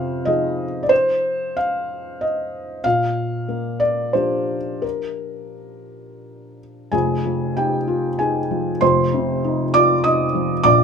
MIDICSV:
0, 0, Header, 1, 2, 480
1, 0, Start_track
1, 0, Tempo, 643087
1, 675, Time_signature, 3, 2, 24, 8
1, 3094, Tempo, 695249
1, 5014, Tempo, 626959
1, 6934, Tempo, 607903
1, 8042, End_track
2, 0, Start_track
2, 0, Title_t, "Felt piano"
2, 0, Program_c, 0, 0
2, 0, Control_c, 0, 64, 127
2, 0, Note_on_c, 0, 41, 66
2, 0, Note_on_c, 0, 48, 44
2, 0, Note_on_c, 0, 72, 92
2, 0, Note_on_c, 0, 77, 83
2, 189, Note_on_c, 0, 75, 84
2, 199, Note_on_c, 0, 63, 42
2, 202, Note_off_c, 0, 77, 0
2, 202, Note_on_c, 0, 53, 43
2, 206, Note_on_c, 0, 68, 44
2, 486, Note_off_c, 0, 48, 0
2, 614, Note_off_c, 0, 75, 0
2, 618, Note_on_c, 0, 74, 64
2, 644, Note_off_c, 0, 41, 0
2, 666, Note_off_c, 0, 72, 0
2, 666, Note_on_c, 0, 72, 90
2, 673, Note_off_c, 0, 74, 0
2, 689, Control_c, 0, 64, 0
2, 797, Control_c, 0, 64, 127
2, 1169, Note_on_c, 0, 77, 83
2, 1175, Note_off_c, 0, 72, 0
2, 1650, Note_on_c, 0, 75, 74
2, 1652, Note_off_c, 0, 77, 0
2, 2091, Note_off_c, 0, 63, 0
2, 2092, Note_off_c, 0, 53, 0
2, 2095, Note_off_c, 0, 68, 0
2, 2120, Note_on_c, 0, 77, 88
2, 2121, Note_off_c, 0, 75, 0
2, 2131, Note_on_c, 0, 46, 57
2, 2137, Control_c, 0, 64, 0
2, 2243, Control_c, 0, 64, 127
2, 2601, Note_on_c, 0, 58, 42
2, 2834, Note_on_c, 0, 74, 80
2, 2843, Note_off_c, 0, 77, 0
2, 3085, Note_on_c, 0, 72, 72
2, 3088, Note_off_c, 0, 74, 0
2, 3094, Note_on_c, 0, 62, 36
2, 3095, Note_on_c, 0, 53, 34
2, 3101, Note_on_c, 0, 67, 40
2, 3376, Note_off_c, 0, 58, 0
2, 3543, Note_off_c, 0, 46, 0
2, 3559, Note_on_c, 0, 70, 66
2, 3563, Note_off_c, 0, 72, 0
2, 3582, Control_c, 0, 64, 0
2, 3685, Control_c, 0, 64, 127
2, 4776, Note_off_c, 0, 70, 0
2, 4987, Note_off_c, 0, 53, 0
2, 4987, Note_off_c, 0, 62, 0
2, 4990, Note_off_c, 0, 67, 0
2, 5006, Note_on_c, 0, 80, 74
2, 5007, Note_on_c, 0, 29, 53
2, 5013, Note_on_c, 0, 68, 60
2, 5018, Note_on_c, 0, 41, 55
2, 5029, Control_c, 0, 64, 0
2, 5173, Control_c, 0, 64, 127
2, 5262, Note_on_c, 0, 53, 39
2, 5473, Note_off_c, 0, 68, 0
2, 5501, Note_off_c, 0, 80, 0
2, 5504, Note_on_c, 0, 79, 73
2, 5510, Note_on_c, 0, 67, 50
2, 5515, Note_on_c, 0, 63, 42
2, 5649, Note_off_c, 0, 53, 0
2, 5741, Note_on_c, 0, 65, 47
2, 5892, Note_off_c, 0, 63, 0
2, 5954, Note_off_c, 0, 67, 0
2, 5979, Note_on_c, 0, 80, 72
2, 5981, Note_off_c, 0, 79, 0
2, 5988, Note_on_c, 0, 68, 56
2, 5989, Note_on_c, 0, 63, 43
2, 6123, Note_off_c, 0, 65, 0
2, 6224, Note_on_c, 0, 53, 48
2, 6365, Note_off_c, 0, 63, 0
2, 6422, Note_off_c, 0, 29, 0
2, 6428, Note_off_c, 0, 41, 0
2, 6429, Note_off_c, 0, 68, 0
2, 6454, Note_on_c, 0, 84, 92
2, 6455, Note_on_c, 0, 29, 62
2, 6456, Note_off_c, 0, 80, 0
2, 6464, Note_on_c, 0, 72, 67
2, 6466, Note_on_c, 0, 41, 61
2, 6471, Control_c, 0, 64, 0
2, 6603, Note_off_c, 0, 53, 0
2, 6616, Control_c, 0, 64, 127
2, 6709, Note_on_c, 0, 48, 50
2, 6941, Note_on_c, 0, 63, 49
2, 7087, Note_off_c, 0, 48, 0
2, 7149, Note_off_c, 0, 72, 0
2, 7174, Note_on_c, 0, 86, 107
2, 7176, Note_off_c, 0, 84, 0
2, 7177, Note_on_c, 0, 74, 75
2, 7186, Note_on_c, 0, 65, 55
2, 7325, Note_off_c, 0, 63, 0
2, 7401, Note_off_c, 0, 74, 0
2, 7410, Note_on_c, 0, 87, 92
2, 7417, Note_off_c, 0, 86, 0
2, 7417, Note_on_c, 0, 75, 78
2, 7422, Note_on_c, 0, 63, 49
2, 7567, Note_off_c, 0, 65, 0
2, 7656, Note_on_c, 0, 53, 56
2, 7803, Note_off_c, 0, 63, 0
2, 7863, Note_off_c, 0, 29, 0
2, 7864, Note_off_c, 0, 75, 0
2, 7869, Note_off_c, 0, 41, 0
2, 7882, Note_on_c, 0, 86, 112
2, 7890, Note_on_c, 0, 34, 72
2, 7892, Note_off_c, 0, 87, 0
2, 7894, Note_on_c, 0, 46, 69
2, 7895, Note_off_c, 0, 53, 0
2, 7895, Note_on_c, 0, 74, 82
2, 7910, Control_c, 0, 64, 0
2, 8042, Note_off_c, 0, 34, 0
2, 8042, Note_off_c, 0, 46, 0
2, 8042, Note_off_c, 0, 74, 0
2, 8042, Note_off_c, 0, 86, 0
2, 8042, End_track
0, 0, End_of_file